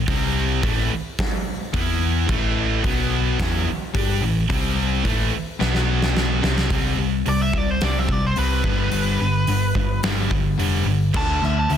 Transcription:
0.08 0.60 C2 loud
0.08 0.62 C3 medium
0.08 0.63 G3 loud
0.08 0.63 C4 medium
0.08 kick loud
0.08 open hi-hat medium
0.63 0.89 A1 medium
0.63 0.90 A2 medium
0.63 0.90 E3 medium
0.63 0.91 A3 loud
0.63 kick loud
0.63 open hi-hat medium
1.19 kick loud
1.19 snare loud
1.19 open hi-hat medium
1.73 2.25 E2 loud
1.73 2.27 E3 loud
1.73 2.28 B3 loud
1.73 2.28 E4 loud
1.73 kick loud
1.73 open hi-hat medium
2.28 2.80 A1 loud
2.28 2.83 A2 medium
2.28 2.83 E3 loud
2.28 2.84 A3 loud
2.28 kick loud
2.28 crash medium
2.84 3.36 B1 medium
2.84 3.38 B2 medium
2.84 3.38 F#3 loud
2.84 3.38 B3 loud
2.84 kick loud
2.84 open hi-hat medium
3.39 3.65 E2 loud
3.39 3.66 E3 loud
3.39 3.66 B3 loud
3.39 3.66 E4 loud
3.39 kick loud
3.39 snare loud
3.39 open hi-hat medium
3.67 muted overdriven electric guitar stroke medium
3.67 muted distorted electric guitar stroke medium
3.67 muted picked electric bass stroke soft
3.94 4.20 G2 loud
3.94 4.21 G3 medium
3.94 4.21 D4 medium
3.94 4.22 G4 loud
3.94 kick loud
3.94 open hi-hat medium
4.21 4.48 A1 medium
4.21 4.44 A2 medium
4.21 4.44 E3 medium
4.49 5.01 C2 loud
4.49 5.03 C3 medium
4.49 5.04 G3 loud
4.49 5.04 C4 loud
4.49 kick loud
4.49 open hi-hat medium
5.04 5.31 A1 medium
5.04 5.31 A2 medium
5.04 5.31 E3 medium
5.04 5.32 A3 medium
5.04 kick loud
5.04 open hi-hat medium
5.59 6.39 B1 medium
5.59 6.41 B2 medium
5.59 6.41 F#3 loud
5.59 6.42 B3 loud
5.59 snare medium
5.75 snare medium
6.02 snare medium
6.17 snare medium
6.42 6.69 C2 loud
6.42 6.68 C3 loud
6.42 6.68 G3 loud
6.42 6.69 C4 loud
6.42 snare loud
6.58 snare medium
6.69 6.94 C2 medium
6.69 6.96 C3 medium
6.69 6.96 G3 medium
6.69 6.97 C4 medium
6.69 kick loud
6.69 open hi-hat medium
6.98 7.22 C2 medium
6.98 7.23 C3 medium
6.98 7.23 G3 medium
7.26 7.50 C2 medium
7.26 7.51 C3 medium
7.26 7.51 G3 medium
7.26 7.41 D5 medium
7.26 open hi-hat medium
7.42 7.58 E5 medium
7.53 7.77 C2 medium
7.53 7.79 C3 medium
7.53 7.79 G3 medium
7.53 kick medium
7.58 7.71 D5 medium
7.71 7.83 C5 medium
7.81 8.05 C2 medium
7.81 8.07 C3 loud
7.81 8.08 G3 medium
7.81 8.08 C4 medium
7.81 7.99 D5 medium
7.81 snare loud
7.81 open hi-hat medium
7.99 8.12 E5 medium
8.09 8.32 C2 medium
8.09 8.34 C3 medium
8.09 8.34 G3 medium
8.09 8.24 D5 medium
8.09 kick medium
8.27 8.38 C5 medium
8.36 8.61 C2 medium
8.36 8.63 C3 medium
8.36 8.63 G3 medium
8.36 8.63 C4 medium
8.36 10.00 B4 loud
8.36 open hi-hat medium
8.64 8.88 G1 medium
8.64 8.90 G2 medium
8.64 8.91 D3 medium
8.64 8.91 G3 medium
8.64 kick loud
8.91 9.16 G1 loud
8.91 9.18 G2 medium
8.91 9.18 D3 medium
8.91 9.18 G3 medium
8.91 open hi-hat medium
9.20 9.44 G1 medium
9.20 9.45 G2 medium
9.20 9.45 D3 medium
9.47 9.71 G1 medium
9.47 9.73 G2 medium
9.47 9.73 D3 medium
9.47 open hi-hat medium
9.75 9.99 G1 loud
9.75 10.01 G2 medium
9.75 10.01 D3 medium
9.75 kick medium
10.03 10.27 G1 medium
10.03 10.29 G2 medium
10.03 10.30 D3 loud
10.03 10.30 G3 loud
10.03 snare loud
10.03 open hi-hat medium
10.31 10.54 G1 medium
10.31 10.56 G2 medium
10.31 10.56 D3 medium
10.31 kick medium
10.58 10.82 F1 medium
10.58 10.85 G2 medium
10.58 10.85 D3 loud
10.58 10.85 G3 loud
10.58 open hi-hat medium
10.86 11.10 G1 medium
10.86 11.11 G2 medium
10.86 11.12 D3 medium
11.14 11.38 D2 loud
11.14 11.40 D3 medium
11.14 11.40 A3 loud
11.14 11.40 D4 medium
11.14 11.42 A5 loud
11.14 kick loud
11.14 crash loud
11.41 11.66 D2 medium
11.41 11.67 D3 medium
11.41 11.67 A3 medium
11.41 11.57 E5 medium
11.41 snare soft
11.59 11.71 A5 medium
11.70 11.77 D2 medium
11.70 11.77 D3 medium
11.70 11.77 A3 medium
11.70 11.77 E5 medium
11.70 open hi-hat medium

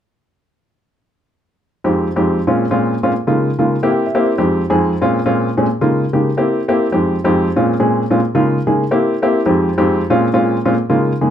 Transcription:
1.84 2.07 F2 medium
1.84 2.07 G#3 medium
1.84 2.07 C4 medium
1.84 2.07 D#4 medium
1.84 2.07 G4 medium
2.16 2.38 F2 medium
2.16 2.38 G#3 medium
2.16 2.38 C4 medium
2.16 2.39 D#4 medium
2.16 2.39 G4 medium
2.47 2.64 A#2 medium
2.47 2.64 G#3 medium
2.47 2.64 C4 medium
2.47 2.64 C#4 medium
2.47 2.64 F4 medium
2.71 2.93 A#2 medium
2.71 2.94 G#3 medium
2.71 2.94 C4 medium
2.71 2.93 C#4 medium
2.71 2.94 F4 medium
3.03 3.11 A#2 medium
3.03 3.11 G#3 medium
3.03 3.11 C4 medium
3.03 3.11 C#4 medium
3.03 3.11 F4 medium
3.27 3.49 C#3 medium
3.27 3.50 G#3 medium
3.27 3.49 A#3 medium
3.27 3.50 D#4 medium
3.27 3.50 F4 medium
3.59 3.75 C#3 medium
3.59 3.75 G#3 medium
3.59 3.75 A#3 medium
3.59 3.75 D#4 medium
3.59 3.75 F4 medium
3.83 4.05 A#3 medium
3.83 4.05 C4 medium
3.83 4.05 E4 medium
3.83 4.05 G4 medium
3.90 4.05 G5 medium
4.06 4.21 E5 medium
4.15 4.31 A#3 medium
4.15 4.32 C4 medium
4.15 4.32 E4 medium
4.15 4.31 G4 medium
4.23 4.38 C5 medium
4.38 4.61 F2 medium
4.38 4.61 G#3 medium
4.38 4.61 C4 medium
4.38 4.61 D#4 medium
4.38 4.61 G4 medium
4.70 4.92 F2 medium
4.70 4.92 G#3 medium
4.70 4.92 C4 medium
4.70 4.92 D#4 medium
4.70 4.92 G#4 medium
5.01 5.18 A#2 medium
5.01 5.18 G#3 medium
5.01 5.18 C4 medium
5.01 5.18 C#4 medium
5.01 5.19 F4 medium
5.26 5.48 A#2 medium
5.26 5.48 G#3 medium
5.26 5.48 C4 medium
5.26 5.48 C#4 medium
5.26 5.48 F4 medium
5.57 5.65 A#2 medium
5.57 5.65 G#3 medium
5.57 5.65 C4 medium
5.57 5.65 C#4 medium
5.57 5.66 G#4 medium
5.81 6.03 C#3 medium
5.81 6.04 G#3 medium
5.81 6.04 A#3 medium
5.81 6.04 D#4 medium
5.81 6.04 F4 medium
6.13 6.29 C#3 medium
6.13 6.29 G#3 medium
6.13 6.29 A#3 medium
6.13 6.29 D#4 medium
6.13 6.29 G4 medium
6.37 6.59 A#3 medium
6.37 6.59 C4 medium
6.37 6.60 E4 medium
6.37 6.60 G4 medium
6.68 6.85 A#3 medium
6.68 6.85 C4 medium
6.68 6.85 E4 medium
6.68 6.85 G4 medium
6.92 7.15 F2 medium
6.92 7.15 G#3 medium
6.92 7.15 C4 medium
6.92 7.15 D#4 medium
6.92 7.15 G4 medium
7.24 7.47 F2 medium
7.24 7.47 G#3 medium
7.24 7.47 C4 medium
7.24 7.47 D#4 medium
7.24 7.47 G4 medium
7.56 7.73 A#2 medium
7.56 7.73 G#3 medium
7.56 7.73 C4 medium
7.56 7.73 C#4 medium
7.56 7.73 F4 medium
7.80 8.02 A#2 medium
7.80 8.02 G#3 medium
7.80 8.02 C4 medium
7.80 8.02 C#4 medium
7.80 8.02 G#4 medium
8.10 8.19 A#2 medium
8.10 8.19 G#3 medium
8.10 8.19 C4 medium
8.10 8.19 C#4 medium
8.10 8.19 F4 medium
8.35 8.57 C#3 medium
8.35 8.57 G#3 medium
8.35 8.57 A#3 medium
8.35 8.57 D#4 medium
8.35 8.57 F4 medium
8.67 8.83 C#3 medium
8.67 8.83 G#3 medium
8.67 8.83 A#3 medium
8.67 8.83 D#4 medium
8.67 8.83 G#4 medium
8.91 9.13 A#3 medium
8.91 9.13 C4 medium
8.91 9.13 E4 medium
8.91 9.14 G4 medium
9.22 9.39 A#3 medium
9.22 9.39 C4 medium
9.22 9.40 E4 medium
9.22 9.39 G4 medium
9.46 9.68 F2 medium
9.46 9.69 G#3 medium
9.46 9.69 C4 medium
9.46 9.69 D#4 medium
9.46 9.69 G4 medium
9.78 10.00 F2 medium
9.78 10.00 G#3 medium
9.78 10.00 C4 medium
9.78 10.00 D#4 medium
9.78 10.00 G4 medium
10.10 10.27 A#2 medium
10.10 10.27 G#3 medium
10.10 10.27 C4 medium
10.10 10.27 C#4 medium
10.10 10.27 F4 medium
10.33 10.56 A#2 medium
10.33 10.56 G#3 medium
10.33 10.56 C4 medium
10.33 10.56 C#4 medium
10.33 10.56 F4 medium
10.65 10.74 A#2 medium
10.65 10.74 G#3 medium
10.65 10.74 C4 medium
10.65 10.74 C#4 medium
10.65 10.74 F4 medium
10.90 11.12 C#3 medium
10.90 11.12 G#3 medium
10.90 11.12 A#3 medium
10.90 11.12 D#4 medium
10.90 11.12 F4 medium
11.21 11.30 C#3 medium
11.21 11.30 G#3 medium
11.21 11.30 A#3 medium
11.21 11.30 D#4 medium
11.21 11.30 G#4 medium

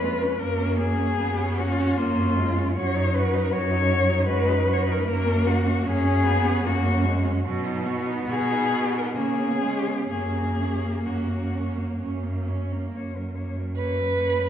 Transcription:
0.00 0.31 F2 medium
0.00 0.39 G#3 medium
0.00 0.41 B4 loud
0.04 0.24 F4 medium
0.22 0.40 C#4 medium
0.39 1.09 F#2 medium
0.39 1.21 A#3 medium
0.39 0.61 A#3 medium
0.39 0.79 A#4 loud
0.60 0.79 C#4 medium
0.78 1.00 A#3 medium
0.78 1.61 G#4 loud
0.99 1.17 C#4 medium
1.17 1.89 F#2 medium
1.17 1.40 A#3 medium
1.17 1.60 B3 medium
1.39 1.60 C#4 medium
1.58 1.81 A#3 medium
1.58 1.99 C#4 loud
1.58 1.99 F#4 loud
1.79 1.98 C#4 medium
1.97 2.68 F#2 loud
1.97 2.39 A#3 loud
1.97 2.20 A#3 medium
1.97 2.76 F4 loud
2.19 2.40 C#4 medium
2.37 2.76 G#3 medium
2.37 2.57 A#3 medium
2.56 2.76 C#4 medium
2.76 3.45 F#2 loud
2.76 4.29 F#3 loud
2.76 2.97 F#4 medium
2.76 3.16 C#5 loud
2.96 3.17 D#4 medium
3.14 3.35 F#4 medium
3.14 3.54 B4 loud
3.34 3.53 D#4 medium
3.53 4.20 F#2 loud
3.53 3.72 F#4 medium
3.53 4.27 C#5 loud
3.71 3.93 D#4 medium
3.91 4.11 F#4 medium
4.09 4.29 D#4 medium
4.27 4.96 F#2 loud
4.27 4.65 G#3 loud
4.27 4.51 F#4 medium
4.27 4.74 B4 loud
4.49 4.69 D#4 medium
4.66 5.07 F#3 medium
4.66 4.89 F#4 medium
4.73 4.84 C#5 loud
4.82 4.93 B4 loud
4.87 5.07 D#4 medium
4.91 5.00 A#4 loud
4.99 5.09 B4 loud
5.05 5.76 F#2 loud
5.05 5.85 A#3 loud
5.05 5.28 A#3 medium
5.05 5.48 A#4 loud
5.26 5.48 C#4 medium
5.47 5.67 A#3 medium
5.47 5.89 F#4 loud
5.66 5.85 C#4 medium
5.84 6.55 F#2 loud
5.84 6.06 A#3 medium
5.84 6.25 C#4 loud
5.84 6.68 G#4 loud
6.04 6.26 C#4 medium
6.23 6.46 A#3 medium
6.23 6.65 B3 loud
6.44 6.64 C#4 medium
6.64 7.36 F#2 loud
6.64 7.06 A#3 loud
6.64 6.87 A#3 medium
6.64 7.46 F#4 loud
6.85 7.07 C#4 medium
7.05 7.44 G#3 medium
7.05 7.27 A#3 medium
7.25 7.45 C#4 medium
7.45 8.18 B2 loud
7.45 7.88 F#3 medium
7.45 7.68 F#4 medium
7.66 7.87 D#4 medium
7.86 9.18 B3 loud
7.86 8.08 F#4 medium
8.06 8.27 D#4 medium
8.28 9.05 B2 medium
8.28 8.52 F#4 medium
8.28 9.00 G#4 loud
8.51 8.72 D#4 medium
8.71 8.96 F#4 medium
8.94 9.16 D#4 medium
8.94 9.16 A#4 loud
9.16 9.98 C#3 medium
9.16 9.61 A#3 medium
9.16 9.42 C#4 medium
9.16 10.08 G#4 loud
9.40 9.64 B3 medium
9.62 10.09 G#3 medium
9.62 9.88 C#4 medium
9.86 10.09 B3 medium
10.09 10.95 F#2 medium
10.09 12.44 A#3 medium
10.09 10.37 C#4 medium
10.09 11.07 G#4 loud
10.35 10.62 A#3 medium
10.61 10.85 C#4 medium
10.84 11.06 A#3 medium
11.06 11.89 F#2 medium
11.06 11.30 C#4 medium
11.06 12.00 F#4 medium
11.29 11.56 A#3 medium
11.55 11.79 C#4 medium
11.77 12.00 A#3 medium
12.01 12.83 F#2 medium
12.01 12.25 C#4 medium
12.23 12.49 A#3 medium
12.48 12.73 C#4 medium
12.72 12.93 A#3 medium
12.94 14.49 F#2 medium
12.94 13.16 A#3 medium
12.94 13.19 C#5 medium
13.15 13.38 F#3 medium
13.15 13.37 A#4 medium
13.35 13.60 A#3 medium
13.35 13.61 C#5 soft
13.58 13.77 F#3 medium
13.58 13.78 A#4 soft
13.75 14.01 A#3 medium
13.75 14.49 B4 loud
13.79 14.00 C#5 medium
13.99 14.20 F#3 soft
13.99 14.21 A#4 soft
14.19 14.42 A#3 medium
14.19 14.41 C#5 medium
14.39 14.49 F#3 soft
14.39 14.49 A#4 medium

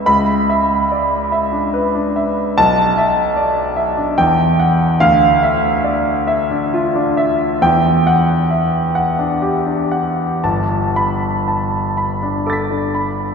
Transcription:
0.06 2.53 C#2 medium
0.06 0.74 B5 medium
0.50 1.16 E5 medium
0.92 1.32 D5 soft
1.32 1.99 E5 medium
1.52 1.86 D4 soft
1.74 2.41 B4 medium
1.95 2.28 D4 medium
2.16 2.58 E5 medium
2.58 4.14 B1 medium
2.58 3.22 A5 loud
2.98 3.61 E5 medium
3.37 3.77 D5 medium
3.76 4.17 E5 medium
3.97 4.18 D4 soft
4.18 4.99 E2 medium
4.18 4.85 G5 medium
4.60 5.01 F#5 medium
5.00 7.58 D2 medium
5.00 5.68 F5 loud
5.43 6.12 E5 medium
5.84 6.29 D5 soft
6.27 6.99 E5 medium
6.51 6.86 D4 medium
6.73 7.44 F4 medium
6.95 7.31 D4 medium
7.17 7.62 E5 medium
7.62 10.38 E2 medium
7.62 8.33 G5 medium
8.07 8.78 F#5 medium
8.51 8.96 E5 medium
8.95 9.70 F#5 medium
9.19 9.56 D4 medium
9.42 10.21 G4 medium
9.66 10.06 D4 soft
9.91 10.43 F#5 medium
10.44 13.35 G1 medium
10.44 11.26 A5 medium
10.96 11.77 B5 medium
11.48 11.97 A5 soft
11.97 12.74 B5 medium
12.23 12.60 D4 soft
12.46 13.23 A4 medium
12.46 13.35 D6 soft
12.46 13.35 A6 soft
12.53 13.35 B6 soft
12.70 13.08 D4 soft
12.95 13.35 B5 medium

